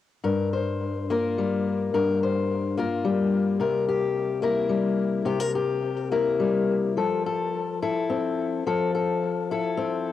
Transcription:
0.24 1.93 G2 medium
0.24 0.53 A#4 soft
0.53 1.09 C5 soft
1.10 2.77 A#3 soft
1.10 1.90 F4 soft
1.10 1.94 A#4 soft
1.38 2.81 G3 soft
1.94 3.60 G2 medium
1.94 2.23 A#4 medium
2.23 2.78 C5 soft
2.77 4.42 A#3 soft
2.77 3.57 F4 soft
2.77 3.60 A#4 medium
3.05 4.69 G3 medium
3.60 5.24 C3 medium
3.60 3.88 A#4 medium
3.89 4.43 G4 soft
4.42 6.10 A#3 soft
4.42 5.43 E4 medium
4.42 5.23 A#4 medium
4.69 5.21 G3 medium
5.25 6.96 C3 medium
5.25 5.40 G4 medium
5.40 5.53 A#4 soft
5.55 6.11 G4 soft
6.11 6.97 A#3 soft
6.11 7.00 E4 soft
6.11 6.94 A#4 medium
6.40 6.93 G3 soft
6.97 8.66 F3 medium
6.97 7.26 A4 soft
7.26 7.82 A4 soft
7.82 8.63 E4 soft
7.82 8.63 A4 medium
8.10 8.63 C4 soft
8.67 10.12 F3 medium
8.67 8.94 A4 medium
8.95 9.51 A4 soft
9.51 10.12 E4 medium
9.51 10.12 A4 medium
9.77 10.12 C4 medium

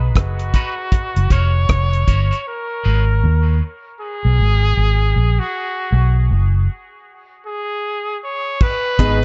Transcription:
0.00 0.16 B1 medium
0.16 0.52 F#1 medium
0.16 1.33 F#4 medium
0.16 kick loud
0.16 cross-stick loud
0.16 closed hi-hat medium
0.39 closed hi-hat medium
0.54 0.73 B3 medium
0.54 0.74 D#4 medium
0.54 0.74 F#4 medium
0.54 0.74 B4 medium
0.54 kick medium
0.54 closed hi-hat medium
0.92 kick loud
0.92 closed hi-hat loud
1.16 1.30 F#1 medium
1.16 closed hi-hat medium
1.30 1.67 F1 medium
1.30 1.50 A#3 medium
1.30 1.51 C#4 medium
1.30 1.51 F#4 medium
1.30 1.51 A#4 medium
1.30 2.47 C#5 loud
1.30 kick medium
1.30 closed hi-hat medium
1.69 2.06 F1 medium
1.69 kick loud
1.69 cross-stick loud
1.69 closed hi-hat medium
1.93 closed hi-hat soft
2.07 2.31 G1 medium
2.07 2.27 A#3 medium
2.07 2.27 C#4 medium
2.07 2.27 F#4 medium
2.07 2.28 A#4 medium
2.07 kick medium
2.07 closed hi-hat medium
2.31 2.41 A#3 medium
2.31 2.41 C#4 soft
2.31 2.40 F#4 medium
2.31 2.40 A#4 medium
2.31 closed hi-hat soft
2.48 3.58 A#4 medium
2.84 3.25 G#1 medium
2.84 3.03 B3 medium
2.84 3.04 D#4 medium
2.84 3.04 G#4 medium
2.84 3.04 B4 medium
3.24 3.60 D#2 loud
4.01 5.41 G#4 loud
4.25 4.38 B1 medium
4.39 4.75 G#1 medium
4.77 5.13 G#1 medium
5.16 5.38 A#1 medium
5.39 6.16 F#4 medium
5.92 6.29 B1 loud
6.31 6.67 F#1 loud
7.46 8.19 G#4 medium
8.24 8.64 C#5 medium
8.61 9.25 B4 loud
8.61 kick loud
8.61 crash medium
8.99 9.25 G#1 loud
8.99 9.17 B3 medium
8.99 9.18 B3 medium
8.99 9.19 D#4 medium
8.99 9.18 D#4 medium
8.99 9.19 G#4 medium
8.99 9.18 G#4 medium
8.99 9.19 B4 medium
8.99 kick medium
8.99 closed hi-hat medium

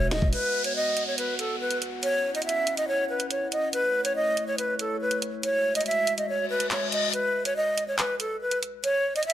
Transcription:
0.00 0.13 E1 loud
0.00 0.31 G#3 medium
0.00 0.31 F#4 medium
0.00 0.31 E5 medium
0.11 0.22 D#1 loud
0.11 0.28 D#5 medium
0.11 snare loud
0.11 closed hi-hat medium
0.22 0.32 E1 loud
0.22 kick loud
0.33 2.01 B3 medium
0.33 2.01 F#4 medium
0.33 0.63 B4 medium
0.33 3.70 F#5 medium
0.33 closed hi-hat medium
0.33 downlifter medium
0.64 0.73 C#5 medium
0.64 closed hi-hat medium
0.76 1.05 D#5 medium
0.97 closed hi-hat medium
1.07 1.16 C#5 medium
1.18 1.35 B4 medium
1.18 closed hi-hat medium
1.39 1.56 A4 medium
1.39 closed hi-hat medium
1.61 1.77 B4 medium
1.71 closed hi-hat medium
1.82 closed hi-hat medium
2.03 3.71 C#4 medium
2.03 3.71 E4 medium
2.03 2.33 C#5 loud
2.03 closed hi-hat medium
2.35 2.43 D#5 medium
2.35 closed hi-hat soft
2.42 2.75 E5 medium
2.42 closed hi-hat medium
2.49 closed hi-hat medium
2.67 closed hi-hat medium
2.77 2.86 D#5 medium
2.77 closed hi-hat medium
2.88 3.05 C#5 medium
3.09 3.26 B4 medium
3.20 closed hi-hat medium
3.31 3.48 C#5 medium
3.31 closed hi-hat medium
3.52 3.69 D#5 medium
3.52 closed hi-hat medium
3.73 5.42 A3 medium
3.73 5.42 E4 medium
3.73 4.03 B4 medium
3.73 5.42 C#5 medium
3.73 closed hi-hat medium
4.05 4.13 C#5 medium
4.05 closed hi-hat medium
4.16 4.46 D#5 medium
4.37 closed hi-hat medium
4.47 4.56 C#5 medium
4.58 4.75 B4 medium
4.58 closed hi-hat medium
4.79 4.97 A4 medium
4.79 closed hi-hat medium
5.01 5.18 B4 medium
5.11 closed hi-hat medium
5.22 closed hi-hat medium
5.43 7.12 G#3 medium
5.43 7.12 F#4 medium
5.43 5.74 C#5 medium
5.43 7.12 E5 medium
5.43 closed hi-hat medium
5.75 5.84 D#5 medium
5.75 closed hi-hat medium
5.81 closed hi-hat medium
5.86 6.16 E5 medium
5.86 closed hi-hat medium
5.91 closed hi-hat soft
6.07 closed hi-hat medium
6.18 6.26 D#5 medium
6.18 closed hi-hat medium
6.28 6.46 C#5 medium
6.28 reverse cymbal medium
6.50 6.67 B4 medium
6.60 closed hi-hat medium
6.71 6.88 C#5 medium
6.71 clap loud
6.71 closed hi-hat medium
6.92 7.09 D#5 medium
6.92 closed hi-hat medium
7.13 7.43 B4 medium
7.13 closed hi-hat medium
7.45 7.54 C#5 medium
7.45 closed hi-hat medium
7.56 7.86 D#5 medium
7.78 closed hi-hat medium
7.88 7.96 C#5 medium
7.99 8.16 B4 medium
7.99 clap loud
7.99 closed hi-hat medium
8.20 8.37 A4 medium
8.20 closed hi-hat medium
8.41 8.58 B4 medium
8.51 closed hi-hat medium
8.63 closed hi-hat medium
8.84 9.14 C#5 loud
8.84 closed hi-hat medium
9.16 9.24 D#5 medium
9.16 closed hi-hat soft
9.23 9.33 E5 medium
9.23 closed hi-hat medium
9.30 closed hi-hat medium

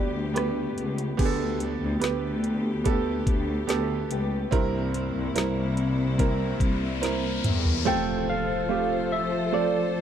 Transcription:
0.00 0.73 D2 medium
0.00 1.64 G3 medium
0.00 1.15 A3 medium
0.00 0.34 B3 medium
0.00 1.16 B3 medium
0.00 0.34 G4 medium
0.00 0.36 G4 medium
0.00 1.16 G4 medium
0.00 1.22 A4 medium
0.00 0.32 B4 medium
0.00 0.37 B4 medium
0.00 0.77 D5 loud
0.34 1.61 A3 medium
0.34 1.14 B3 medium
0.34 1.14 G4 medium
0.34 1.64 G4 medium
0.34 1.15 B4 medium
0.34 1.19 B4 medium
0.34 cross-stick loud
0.34 closed hi-hat medium
0.78 1.16 C#2 medium
0.78 closed hi-hat medium
0.98 closed hi-hat medium
1.17 1.78 D2 medium
1.17 2.40 D3 medium
1.17 4.49 A3 medium
1.17 1.97 B3 medium
1.17 4.49 B3 medium
1.17 1.98 G4 medium
1.17 4.49 G4 medium
1.17 1.26 G#4 medium
1.17 2.85 B4 medium
1.17 kick medium
1.17 closed hi-hat medium
1.17 crash medium
1.25 2.02 A4 medium
1.60 2.84 A3 soft
1.60 closed hi-hat medium
1.81 2.01 D2 medium
2.00 3.24 D2 medium
2.00 2.80 B3 medium
2.00 2.81 G4 medium
2.00 2.81 B4 medium
2.00 closed hi-hat medium
2.04 snare loud
2.44 closed hi-hat medium
2.84 4.10 A3 medium
2.84 3.64 B3 medium
2.84 3.65 G4 medium
2.84 4.11 G4 medium
2.84 3.65 A4 medium
2.84 3.68 B4 medium
2.84 kick medium
2.84 closed hi-hat medium
3.27 3.66 D2 medium
3.27 kick medium
3.27 closed hi-hat medium
3.67 4.08 D2 medium
3.67 4.47 B3 medium
3.67 4.48 G4 medium
3.67 4.48 A4 medium
3.67 4.11 B4 medium
3.67 snare loud
3.67 closed hi-hat medium
4.11 4.50 C#2 medium
4.11 4.61 A3 medium
4.11 6.19 G4 medium
4.11 4.53 B4 medium
4.11 closed hi-hat medium
4.51 5.11 C2 medium
4.51 5.73 G2 medium
4.51 7.82 C3 medium
4.51 7.86 C3 medium
4.51 7.82 G3 medium
4.51 7.82 A#3 medium
4.51 5.31 C4 loud
4.51 5.31 E4 medium
4.51 7.82 E4 medium
4.51 5.32 A#4 loud
4.51 6.19 A#4 medium
4.51 kick loud
4.51 closed hi-hat medium
4.51 riser medium
4.94 6.19 C4 medium
4.94 closed hi-hat medium
5.15 5.35 C2 loud
5.34 6.57 C2 loud
5.34 6.14 C4 medium
5.34 6.15 E4 medium
5.34 6.15 A#4 medium
5.34 snare loud
5.34 closed hi-hat medium
5.77 closed hi-hat medium
6.18 6.98 C4 medium
6.18 7.44 C4 medium
6.18 6.98 E4 medium
6.18 7.44 E4 medium
6.18 6.99 A#4 medium
6.18 7.01 A#4 medium
6.18 kick medium
6.18 closed hi-hat medium
6.60 7.40 C2 medium
6.60 kick medium
6.60 closed hi-hat medium
7.01 7.81 C4 medium
7.01 7.82 E4 medium
7.01 7.44 A#4 medium
7.01 7.82 A#4 medium
7.01 snare medium
7.01 closed hi-hat medium
7.44 7.83 E2 medium
7.44 8.45 C4 medium
7.44 7.95 E4 medium
7.44 7.95 A#4 medium
7.44 closed hi-hat medium
7.44 mid tom medium
7.65 floor tom medium
7.85 9.07 C3 medium
7.85 10.01 F3 medium
7.85 8.65 A3 loud
7.85 8.65 C4 loud
7.85 8.65 F4 medium
7.85 10.01 F4 medium
7.85 10.01 A4 medium
7.85 8.65 A4 loud
7.85 10.01 C5 medium
7.85 8.26 G5 loud
7.85 impact medium
8.30 9.14 F5 loud
8.69 9.48 A3 medium
8.69 9.48 C4 medium
8.69 9.49 F4 medium
8.69 9.49 G4 medium
9.12 9.55 E5 loud
9.52 10.01 A3 medium
9.52 10.01 C4 medium
9.52 10.01 F4 medium
9.52 10.01 A4 medium
9.52 10.01 D5 loud

